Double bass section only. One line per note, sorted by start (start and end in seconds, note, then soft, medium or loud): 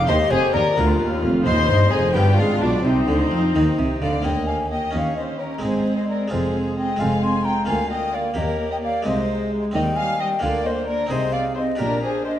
0.09 0.17 D#2 medium
0.32 0.40 F1 medium
0.54 0.62 D#2 medium
0.77 1.00 D2 medium
1.00 1.23 D#2 medium
1.23 1.46 F1 medium
1.46 1.69 D#2 medium
1.69 1.92 G1 medium
1.92 2.15 F1 medium
2.15 2.38 G1 medium
2.38 2.62 G#1 medium
2.62 2.84 B1 medium
2.85 3.08 C2 medium
3.08 3.31 D2 medium
3.31 3.54 F2 medium
3.55 3.63 D#2 medium
3.78 3.86 C2 medium
4.02 4.24 D2 medium
4.25 4.83 D#2 medium
4.94 5.52 D#2 medium
5.63 6.21 G#1 medium
6.32 6.90 F1 medium
7.01 7.58 F1 medium
7.70 8.27 D2 medium
8.38 8.95 D#2 medium
9.07 9.64 C2 medium
9.75 10.33 D#2 medium
10.43 11.01 D2 medium
11.12 11.70 C2 medium
11.81 12.39 A#1 medium